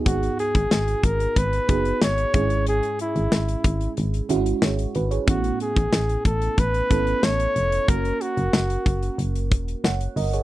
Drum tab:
HH |xxxx-xxxxxxx-xxx|xxxx-xxxxxxx-xxx|xxxx-xxxxxxx-xxx|xxxx-xxxxxxx-xox|
SD |----o-------o---|----o-------o---|----o-------o---|----o-------o---|
BD |o--o--o-o-o---o-|------o---------|o--o--o-o-o-----|o-----o---o-----|